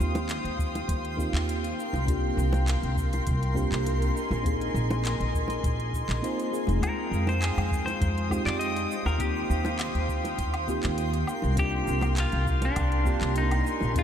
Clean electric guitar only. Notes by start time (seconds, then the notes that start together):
6.84 A#4
7.29 C5
7.42 G#4
7.86 C5
8.46 D5
8.59 D#5
9.06 A#4
9.21 G4
11.59 G4
12.20 F4
12.65 D4
13.38 D#4
13.99 F4